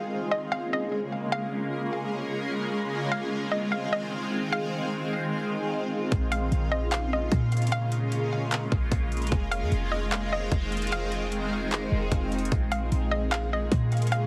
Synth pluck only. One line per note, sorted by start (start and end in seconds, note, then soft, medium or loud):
0.00 0.29 F5 medium
0.31 0.51 D#5 medium
0.52 0.71 F5 medium
0.73 1.29 D#5 medium
1.32 2.88 F5 loud
3.12 3.49 F5 medium
3.51 3.71 D#5 medium
3.72 3.91 F5 medium
3.93 4.49 D#5 medium
4.53 6.08 F5 loud
6.32 6.69 F5 medium
6.72 6.91 D#5 medium
6.92 7.11 F5 loud
7.13 7.69 D#5 medium
7.72 9.28 F5 loud
9.51 9.89 F5 medium
9.92 10.11 D#5 medium
10.12 10.31 F5 medium
10.33 10.89 D#5 medium
10.92 12.48 F5 loud
12.72 13.09 F5 medium
13.11 13.31 D#5 medium
13.32 13.51 F5 loud
13.53 14.09 D#5 medium
14.12 14.27 F5 loud